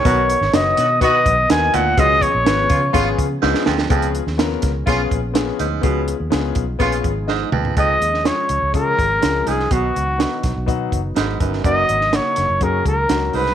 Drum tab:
HH |x-x-x-x-x-x-x-x-|x-x-x-x-x-x-----|xxx-x-x-x-x-x-x-|x-x-x-x-xxx-----|
SD |---oo-o-----o---|----o-------oooo|---oo-o-----o---|----o-------o---|
T2 |----------------|----------------|----------------|--------------o-|
FT |----------------|----------------|----------------|---------------o|
BD |o-------o-o-----|o-o---o-o-o-----|o-----o-o-o-----|o-----o-o-o-----|

HH |x-x-x-x-x-x-x-x-|x-x-x-x-x-x-x-x-|x-x-x-x-x-x-x-o-|
SD |---oo-------o--o|----o-o-----o--o|---oo-o-----o--o|
T2 |----------------|----------------|----------------|
FT |----------------|----------------|----------------|
BD |o-------o-o-----|o-----o-o-o---o-|o-------o-o-----|